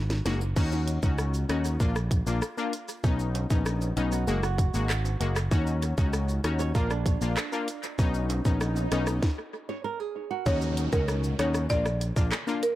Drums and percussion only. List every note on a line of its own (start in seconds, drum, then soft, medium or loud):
0.10 snare medium
0.10 shaker soft
0.26 snare medium
0.26 closed hi-hat medium
0.26 shaker medium
0.41 shaker medium
0.56 kick loud
0.56 crash loud
0.56 shaker medium
0.56 maracas medium
0.72 shaker medium
0.72 maracas soft
0.88 closed hi-hat medium
0.88 shaker soft
0.88 maracas soft
1.03 kick medium
1.03 shaker medium
1.03 maracas medium
1.18 cross-stick loud
1.18 shaker medium
1.18 maracas medium
1.34 maracas medium
1.34 shaker medium
1.49 cross-stick loud
1.49 closed hi-hat medium
1.49 shaker medium
1.64 maracas medium
1.64 shaker medium
1.80 kick medium
1.80 shaker medium
1.80 maracas medium
1.96 cross-stick medium
1.96 shaker soft
1.96 maracas medium
2.11 kick medium
2.11 closed hi-hat medium
2.11 maracas medium
2.11 shaker medium
2.27 shaker medium
2.27 maracas medium
2.42 cross-stick medium
2.42 maracas medium
2.42 shaker medium
2.58 shaker soft
2.58 maracas medium
2.73 closed hi-hat medium
2.73 shaker medium
2.73 maracas medium
2.88 maracas medium
2.88 shaker medium
3.04 kick loud
3.04 maracas medium
3.04 shaker medium
3.19 shaker medium
3.19 maracas soft
3.35 closed hi-hat medium
3.35 high timbale medium
3.35 shaker soft
3.35 maracas soft
3.50 kick loud
3.50 shaker medium
3.50 maracas medium
3.66 cross-stick loud
3.66 shaker medium
3.66 maracas medium
3.81 maracas medium
3.81 shaker medium
3.97 closed hi-hat medium
3.97 shaker medium
4.12 maracas medium
4.12 shaker medium
4.28 shaker medium
4.28 maracas medium
4.43 cross-stick medium
4.43 shaker medium
4.43 maracas medium
4.58 kick loud
4.58 closed hi-hat medium
4.58 maracas medium
4.58 shaker medium
4.74 maracas medium
4.74 shaker medium
4.89 cross-stick medium
4.89 clap medium
4.89 maracas medium
4.89 shaker medium
5.05 high timbale medium
5.05 maracas medium
5.05 shaker soft
5.21 closed hi-hat medium
5.21 shaker medium
5.21 maracas medium
5.36 cross-stick loud
5.36 maracas medium
5.36 shaker medium
5.51 kick loud
5.51 maracas medium
5.51 shaker medium
5.67 shaker medium
5.67 maracas medium
5.82 closed hi-hat medium
5.82 maracas soft
5.82 shaker soft
5.98 kick loud
5.98 shaker medium
5.98 maracas medium
6.13 cross-stick medium
6.13 shaker medium
6.13 maracas medium
6.28 maracas medium
6.28 shaker medium
6.44 cross-stick loud
6.44 closed hi-hat medium
6.44 shaker medium
6.59 maracas medium
6.59 shaker medium
6.75 kick medium
6.75 shaker medium
6.75 maracas medium
6.90 cross-stick medium
6.90 shaker medium
6.90 maracas medium
7.06 kick loud
7.06 closed hi-hat medium
7.06 maracas medium
7.06 shaker medium
7.21 shaker medium
7.21 maracas medium
7.36 cross-stick medium
7.36 clap medium
7.36 maracas medium
7.36 shaker medium
7.52 maracas medium
7.52 shaker soft
7.68 closed hi-hat medium
7.68 shaker medium
7.68 maracas medium
7.83 maracas medium
7.83 shaker medium
7.99 kick loud
7.99 maracas medium
7.99 shaker medium
8.14 maracas soft
8.14 shaker medium
8.30 closed hi-hat medium
8.30 high timbale medium
8.30 maracas medium
8.30 shaker medium
8.45 kick medium
8.45 shaker medium
8.45 maracas medium
8.61 cross-stick loud
8.61 shaker medium
8.61 maracas medium
8.76 maracas medium
8.76 shaker medium
8.92 cross-stick loud
8.92 closed hi-hat medium
8.92 maracas soft
8.92 shaker medium
9.06 cross-stick medium
9.06 maracas medium
9.06 shaker medium
9.23 kick loud
9.23 snare medium
10.46 kick loud
10.46 maracas medium
10.46 shaker medium
10.61 shaker medium
10.61 maracas medium
10.77 closed hi-hat medium
10.77 shaker medium
10.77 maracas soft
10.92 kick loud
10.92 shaker medium
10.92 maracas medium
11.08 cross-stick loud
11.08 shaker medium
11.08 maracas medium
11.23 maracas medium
11.23 shaker medium
11.39 cross-stick loud
11.39 closed hi-hat medium
11.39 shaker medium
11.39 maracas soft
11.54 cross-stick medium
11.54 maracas medium
11.54 shaker medium
11.70 kick medium
11.70 shaker medium
11.70 maracas medium
11.85 cross-stick loud
11.85 shaker soft
11.85 maracas medium
12.01 closed hi-hat medium
12.01 maracas medium
12.01 shaker medium
12.16 kick loud
12.16 shaker medium
12.16 maracas medium
12.31 cross-stick medium
12.31 clap medium
12.31 maracas medium
12.31 shaker medium
12.47 shaker soft
12.47 maracas medium
12.63 closed hi-hat medium
12.63 shaker medium